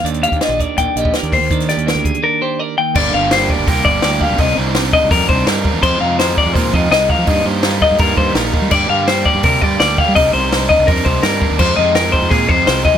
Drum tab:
CC |----------------|----------------|x---------------|----------------|
HH |xxxxx-x-x-x-xxo-|xxxxxxxx--------|----o---o---o---|o---o---o---o---|
SD |----o-------o---|-oo-o-----------|----o-------o---|----o-------o---|
BD |---o--o-o--o--o-|o-----o---------|o-----o-o-o---o-|o-----o-o-o---o-|

CC |x---------------|----------------|x---------------|----------------|
HH |----o---o---o---|o---o---o---o---|----o---o---o---|o---o---o---o---|
SD |----o-------o---|----o-------o---|----o-------o---|----o-------o---|
BD |o-----o-o-o---o-|o-----o-o-o---o-|o-----o-o-o---o-|o-----o-o-o---o-|

CC |x---------------|
HH |----o---o---o---|
SD |----o-------o---|
BD |o-----o-o-o---o-|